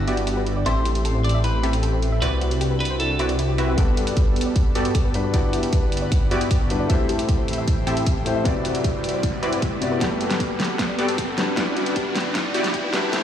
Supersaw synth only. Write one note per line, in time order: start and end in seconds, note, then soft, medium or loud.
0.08 0.64 B3 medium
0.08 0.64 E4 medium
0.08 0.64 F#4 medium
0.08 0.64 G4 medium
0.08 0.64 D5 medium
0.66 1.61 C4 medium
0.66 1.61 E4 medium
0.66 1.61 G4 medium
0.66 1.61 A4 medium
0.66 1.61 E5 medium
1.63 2.20 C4 medium
1.63 2.20 E4 medium
1.63 2.20 G4 medium
1.63 2.20 A4 medium
1.63 2.20 E5 medium
2.22 3.17 C4 medium
2.22 3.17 E4 medium
2.22 3.17 F#4 medium
2.22 3.17 B4 medium
2.22 3.17 D5 medium
3.20 3.56 C4 medium
3.20 3.56 E4 medium
3.20 3.56 F#4 medium
3.20 3.56 B4 medium
3.20 3.56 D5 loud
3.58 3.75 C4 medium
3.58 3.75 E4 medium
3.58 3.76 F#4 medium
3.58 3.75 B4 medium
3.58 3.76 E5 loud
3.78 4.73 B3 medium
3.78 4.73 F#4 medium
3.78 4.73 G4 medium
3.78 4.73 A4 medium
3.78 4.73 D5 medium
4.75 5.13 B3 medium
4.75 5.13 F#4 medium
4.75 5.13 G4 medium
4.75 5.13 A4 medium
4.75 5.13 D5 medium
5.34 6.29 B3 medium
5.34 6.29 E4 medium
5.34 6.29 F#4 medium
5.34 6.29 G4 medium
5.34 6.29 D5 medium
6.31 6.87 B3 medium
6.31 6.87 E4 medium
6.31 6.87 F#4 medium
6.31 6.87 G4 medium
6.31 6.87 D5 medium
6.90 7.85 C4 medium
6.90 7.85 E4 medium
6.90 7.85 G4 medium
6.90 7.85 A4 medium
6.90 7.85 E5 medium
7.87 8.43 C4 medium
7.87 8.43 E4 medium
7.87 8.43 G4 medium
7.87 8.43 A4 medium
7.87 8.43 E5 medium
8.45 9.40 C4 medium
8.45 9.40 E4 medium
8.45 9.40 F#4 medium
8.45 9.40 B4 medium
8.45 9.40 D5 medium
9.43 9.99 C4 medium
9.43 9.99 E4 medium
9.43 9.99 F#4 medium
9.43 9.99 B4 medium
9.43 9.99 D5 medium
10.01 10.96 B3 medium
10.01 10.96 F#4 medium
10.01 10.96 G4 medium
10.01 10.96 A4 medium
10.01 10.96 D5 medium
10.99 11.36 B3 medium
10.99 11.36 F#4 medium
10.99 11.36 G4 medium
10.99 11.36 A4 medium
10.99 11.36 D5 medium
11.57 12.52 B3 medium
11.57 12.52 E4 medium
11.57 12.52 F#4 medium
11.57 12.52 G4 medium
11.57 12.52 D5 medium
12.55 13.11 B3 medium
12.55 13.11 E4 medium
12.55 13.11 F#4 medium
12.55 13.11 G4 medium
12.55 13.11 D5 medium
13.13 13.23 C4 medium
13.13 13.23 E4 medium
13.13 13.23 G4 medium
13.13 13.23 A4 medium
13.13 13.23 E5 medium